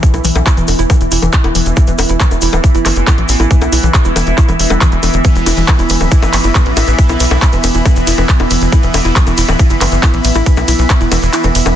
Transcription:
Already playing: E3 B3 E4 E5 B5, downlifter
0.03 kick, closed hi-hat, shaker
0.14 B1 E4, closed hi-hat, high bongo, shaker
0.24 B1 E3, open hi-hat, shaker
0.35 B1, closed hi-hat, high bongo, shaker
0.46 E4, kick, clap, closed hi-hat, shaker
0.57 E1 E3, closed hi-hat, shaker
0.67 E1, open hi-hat, high bongo, shaker
0.79 E1 E4, closed hi-hat, shaker
0.90 E3, kick, closed hi-hat, high bongo, shaker
1.01 E1, closed hi-hat, shaker
1.11 E1 E4, open hi-hat, shaker
1.22 E1 E3, closed hi-hat, high bongo, shaker
1.33 kick, clap, closed hi-hat, shaker
1.44 E1 E4, closed hi-hat, high bongo
1.55 E1 E3, open hi-hat, shaker
1.66 E1, closed hi-hat, shaker
1.77 E4, kick, closed hi-hat, high bongo, shaker
1.87 E1 E3, closed hi-hat, shaker
1.98 E1, open hi-hat, high bongo, shaker
2.09 E1 E4, closed hi-hat, shaker
2.20 E3, kick, clap, closed hi-hat, shaker
2.31 E1, closed hi-hat, high bongo, shaker
2.41 E1 E4, open hi-hat, shaker
2.53 D1 E3, closed hi-hat, high bongo, shaker
2.64 kick, closed hi-hat, shaker
2.75 F#1 E4, closed hi-hat, shaker
2.85 F#1 E3, clap, open hi-hat, high bongo, shaker
2.96 F#1, closed hi-hat, shaker
3.07 E4, kick, clap, closed hi-hat, high bongo, shaker
3.18 A1 E3, closed hi-hat
3.29 A1, open hi-hat, shaker
3.40 A1 E4, closed hi-hat, high bongo, shaker
3.51 E3, kick, closed hi-hat, shaker
3.61 B1, closed hi-hat, high bongo, shaker
3.72 B1 E4, open hi-hat, shaker
3.83 B1 E3, closed hi-hat, shaker
3.94 kick, clap, closed hi-hat, high bongo, shaker
4.05 E1 E4, closed hi-hat, shaker
4.16 E1 E3, open hi-hat, high bongo, shaker
4.27 E1, closed hi-hat, shaker
4.38 E4, kick, clap, closed hi-hat, shaker
4.49 E1 E3, closed hi-hat, high bongo, shaker
4.59 E1, open hi-hat, shaker
4.70 E1 G3, closed hi-hat, high bongo, shaker
4.81 E3, kick, clap, closed hi-hat, shaker
4.92 E1, closed hi-hat
5.03 E1 E3, open hi-hat, high bongo, shaker
5.13 E1 D3, closed hi-hat, shaker
5.24 E3, kick, closed hi-hat, ride, shaker
5.35 E1 E3, closed hi-hat, shaker
5.46 E1 E4, open hi-hat, ride, high bongo, shaker
5.57 E1 E3, closed hi-hat, shaker
5.67 E3, kick, clap, closed hi-hat, ride, high bongo, shaker
5.79 E1 E4, closed hi-hat, shaker
5.89 E1 E3, open hi-hat, ride, shaker
6.01 D1 E3, closed hi-hat, high bongo, shaker
6.11 E4, kick, closed hi-hat, ride, shaker
6.22 F#1 E3, closed hi-hat, high bongo, shaker
6.33 F#1 E3, clap, open hi-hat, ride, shaker
6.44 F#1 E4, closed hi-hat, shaker
6.55 E3, kick, clap, closed hi-hat, ride, high bongo, shaker
6.66 A1 E3, closed hi-hat
6.77 A1 E4, open hi-hat, ride, high bongo, shaker
6.88 A1 E3, closed hi-hat, shaker
6.98 E3, kick, closed hi-hat, ride, shaker
7.09 B1 E4, closed hi-hat, high bongo, shaker
7.20 B1 E3, open hi-hat, ride, shaker
7.31 B1 E3, closed hi-hat, high bongo, shaker
7.42 E4, kick, clap, closed hi-hat, ride, shaker
7.52 E1 E3, closed hi-hat, shaker
7.63 E1 E3, open hi-hat, ride, high bongo, shaker
7.75 E1 E4, closed hi-hat, shaker
7.85 E3, kick, closed hi-hat, ride, high bongo, shaker
7.96 E1 E3, closed hi-hat, shaker
8.07 E1 E4, open hi-hat, ride, shaker
8.18 E1 E3, closed hi-hat, high bongo, shaker
8.29 kick, clap, closed hi-hat, ride, shaker
8.40 E1 E4, closed hi-hat, high bongo
8.50 E1 E3, open hi-hat, ride, shaker
8.62 E1 E3, closed hi-hat, shaker
8.72 E4, kick, closed hi-hat, ride, high bongo, shaker
8.83 E1 E3, closed hi-hat, shaker
8.94 E1 E3, open hi-hat, ride, high bongo, shaker
9.05 E1 E4, closed hi-hat, shaker
9.16 E3, kick, clap, closed hi-hat, ride, shaker
9.27 E1 E3, closed hi-hat, high bongo, shaker
9.37 E1 E4, open hi-hat, ride, shaker
9.48 D1 E3, closed hi-hat, high bongo, shaker
9.59 E3, kick, closed hi-hat, ride, shaker
9.70 F#1 E4, closed hi-hat, shaker
9.81 F#1 E3, clap, open hi-hat, ride, high bongo, shaker
9.92 F#1 E3, closed hi-hat, shaker
10.03 E4, kick, clap, closed hi-hat, ride, high bongo, shaker
10.14 A1 E3, closed hi-hat
10.24 A1 E3, open hi-hat, ride, shaker
10.35 A1 E4, closed hi-hat, high bongo, shaker
10.46 E3, kick, closed hi-hat, ride, shaker
10.57 B1 E3, closed hi-hat, high bongo, shaker
10.68 B1 E4, open hi-hat, ride, shaker
10.79 B1 E3, closed hi-hat, shaker
10.90 E3, kick, clap, closed hi-hat, ride, high bongo, shaker
11.01 E1 E4, closed hi-hat, shaker
11.12 E1 E3, open hi-hat, ride, high bongo, shaker
11.22 E1 E3, closed hi-hat, shaker
11.33 E4, clap, closed hi-hat, ride, shaker
11.43 E1 E3, closed hi-hat, high bongo, shaker
11.55 E1, open hi-hat, ride, shaker
11.66 E1 E3, high bongo, shaker

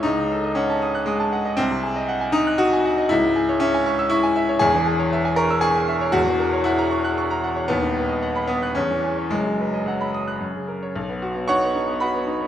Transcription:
0.03 C#2 D#4
0.17 C#3
0.31 A4
0.44 D#5
0.55 C#4 F#5
0.70 A5
0.82 D#6
0.95 F#6
1.06 G#3 D#6
1.20 A5
1.33 F#5
1.45 D#5
1.57 C2 C4
1.71 C3
1.83 G#4
1.96 D#5
2.09 F#5
2.21 G#5
2.32 D#4 D#6
2.47 F#6
2.58 F#4 D#6
2.73 G#5
2.85 F#5
2.98 D#5
3.09 C#2 E4
3.24 G#2
3.36 G#4
3.49 C#5
3.60 C#4 E5
3.74 G#5
3.86 C#6
3.99 E6
4.09 E4 C#6
4.23 G#5
4.36 E5
4.49 C#5
4.59 E1 E2 G#4
4.74 E3
4.87 G#4
4.99 C#5
5.13 E5
5.25 G#5
5.36 A#4 C#6
5.50 E6
5.61 G#4 C#6
5.75 G#5
5.88 E5
6.01 C#5
6.12 E1 E2 F#4
6.26 E3
6.39 A#4
6.53 C#5
6.64 E4 F#5
6.78 A#5
6.91 C#6
7.04 F#6
7.18 C#6
7.30 A#5
7.44 F#5
7.56 C#5
7.68 D#1 D#2 B3
7.82 D#3
7.96 B4
8.09 D#5
8.22 F#5
8.36 B5
8.47 B3 D#6
8.63 F#6
8.75 E2 C#4
8.90 E3
9.04 G#4
9.18 C#5
9.30 F#1 F#2 G#3
9.45 F#3
9.60 B4
9.74 D#5
9.86 F#3 F#5
10.01 B5
10.14 D#6
10.28 F#6
10.41 F#2
10.55 C#3
10.68 A#4
10.82 C#5
10.96 B1
11.09 B3
11.22 F#4
11.36 B3
11.48 D#4 C#5 F#5 C#6
11.63 B3
11.75 D#4
11.89 B3
12.00 F#4 B4 F#5 B5
12.15 B3
12.27 D#4
12.41 B3

